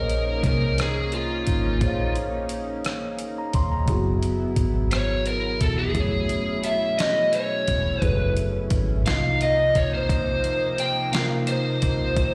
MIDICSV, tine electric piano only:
0, 0, Header, 1, 2, 480
1, 0, Start_track
1, 0, Tempo, 689655
1, 1264, Time_signature, 6, 3, 24, 8
1, 8589, End_track
2, 0, Start_track
2, 0, Title_t, "Tine electric piano"
2, 0, Program_c, 0, 4
2, 0, Control_c, 0, 64, 127
2, 0, Note_on_c, 0, 58, 62
2, 0, Note_on_c, 0, 68, 53
2, 0, Note_on_c, 0, 72, 53
2, 0, Note_on_c, 0, 73, 53
2, 0, Note_on_c, 0, 75, 71
2, 1233, Note_off_c, 0, 58, 0
2, 1238, Note_off_c, 0, 68, 0
2, 1244, Note_off_c, 0, 72, 0
2, 1252, Note_off_c, 0, 73, 0
2, 1252, Note_on_c, 0, 58, 67
2, 1259, Note_off_c, 0, 75, 0
2, 1264, Note_on_c, 0, 68, 59
2, 1276, Note_on_c, 0, 72, 52
2, 1293, Note_on_c, 0, 73, 61
2, 1306, Note_on_c, 0, 77, 69
2, 2355, Note_on_c, 0, 82, 61
2, 2464, Note_off_c, 0, 82, 0
2, 2470, Note_on_c, 0, 84, 70
2, 2581, Note_off_c, 0, 84, 0
2, 2587, Note_on_c, 0, 82, 56
2, 2670, Note_off_c, 0, 58, 0
2, 2676, Note_off_c, 0, 68, 0
2, 2682, Note_off_c, 0, 72, 0
2, 2683, Note_on_c, 0, 54, 77
2, 2691, Note_off_c, 0, 73, 0
2, 2696, Note_on_c, 0, 64, 65
2, 2697, Note_off_c, 0, 77, 0
2, 2708, Note_on_c, 0, 68, 71
2, 2714, Control_c, 0, 64, 0
2, 2723, Note_on_c, 0, 66, 73
2, 2734, Note_on_c, 0, 59, 76
2, 2814, Note_off_c, 0, 82, 0
2, 2826, Control_c, 0, 64, 127
2, 4106, Note_off_c, 0, 54, 0
2, 4112, Note_off_c, 0, 64, 0
2, 4118, Note_off_c, 0, 68, 0
2, 4121, Note_on_c, 0, 54, 61
2, 4126, Note_off_c, 0, 66, 0
2, 4131, Note_off_c, 0, 59, 0
2, 4136, Note_on_c, 0, 64, 60
2, 4150, Note_on_c, 0, 68, 57
2, 4163, Note_on_c, 0, 57, 55
2, 4174, Note_on_c, 0, 73, 64
2, 5545, Note_off_c, 0, 54, 0
2, 5552, Note_off_c, 0, 64, 0
2, 5559, Note_off_c, 0, 68, 0
2, 5566, Note_off_c, 0, 57, 0
2, 5571, Note_off_c, 0, 73, 0
2, 5582, Note_on_c, 0, 54, 61
2, 5587, Note_on_c, 0, 64, 54
2, 5594, Note_on_c, 0, 68, 57
2, 5602, Note_on_c, 0, 69, 57
2, 5607, Note_on_c, 0, 71, 77
2, 6290, Note_on_c, 0, 48, 61
2, 6303, Note_off_c, 0, 54, 0
2, 6303, Note_on_c, 0, 58, 54
2, 6305, Note_off_c, 0, 64, 0
2, 6309, Note_off_c, 0, 68, 0
2, 6313, Note_off_c, 0, 69, 0
2, 6314, Control_c, 0, 64, 0
2, 6316, Note_off_c, 0, 71, 0
2, 6318, Note_on_c, 0, 63, 58
2, 6330, Note_on_c, 0, 65, 56
2, 6345, Note_on_c, 0, 75, 66
2, 6440, Control_c, 0, 64, 127
2, 7709, Note_off_c, 0, 48, 0
2, 7716, Note_off_c, 0, 58, 0
2, 7723, Note_off_c, 0, 63, 0
2, 7729, Note_off_c, 0, 65, 0
2, 7729, Note_on_c, 0, 48, 65
2, 7736, Note_off_c, 0, 75, 0
2, 7741, Note_on_c, 0, 58, 59
2, 7756, Note_on_c, 0, 63, 60
2, 7768, Note_on_c, 0, 65, 56
2, 7780, Note_on_c, 0, 70, 65
2, 8589, Note_off_c, 0, 48, 0
2, 8589, Note_off_c, 0, 58, 0
2, 8589, Note_off_c, 0, 63, 0
2, 8589, Note_off_c, 0, 65, 0
2, 8589, Note_off_c, 0, 70, 0
2, 8589, End_track
0, 0, End_of_file